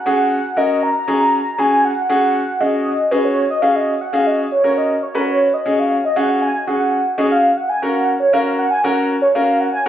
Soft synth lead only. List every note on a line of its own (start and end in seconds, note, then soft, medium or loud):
0.06 0.59 F#5 loud
0.57 0.84 D#5 loud
0.83 1.61 A#5 loud
1.59 1.86 G#5 loud
1.85 2.09 F#5 loud
2.10 2.62 F#5 loud
2.61 3.13 D#5 loud
3.11 3.24 B4 medium
3.25 3.49 C#5 medium
3.50 3.61 D#5 medium
3.62 3.77 F5 loud
3.76 4.03 D#5 medium
4.01 4.15 F#5 medium
4.13 4.28 F5 loud
4.27 4.51 D#5 medium
4.52 4.63 C#5 medium
4.64 4.79 C#5 medium
4.78 5.04 D#5 medium
5.03 5.16 C#5 medium
5.15 5.28 A#4 medium
5.28 5.55 C#5 medium
5.54 5.81 D#5 medium
5.79 6.04 F5 medium
6.05 6.18 D#5 medium
6.17 6.41 F#5 loud
6.42 6.66 G#5 medium
6.67 7.15 F#5 medium
7.18 7.24 D#5 loud
7.32 7.58 F5 medium
7.57 7.71 F#5 medium
7.69 7.84 G#5 loud
7.83 8.08 F#5 medium
8.20 8.35 C#5 loud
8.33 8.58 F5 medium
8.59 8.70 F#5 medium
8.71 8.86 G#5 loud
8.84 9.10 F#5 medium
9.22 9.36 C#5 loud
9.35 9.62 F5 medium
9.60 9.72 F#5 medium
9.72 9.87 G#5 loud